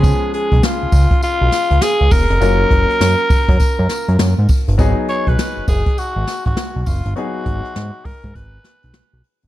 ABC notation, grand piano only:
X:1
M:4/4
L:1/8
Q:"Swing 16ths" 1/4=101
K:G#dor
V:1 name="Grand piano"
[E,G,B,CG]6- [E,G,B,CG] z | [F,A,CEA]8 | [F,B,DG]8 | [F,B,DG]8 |]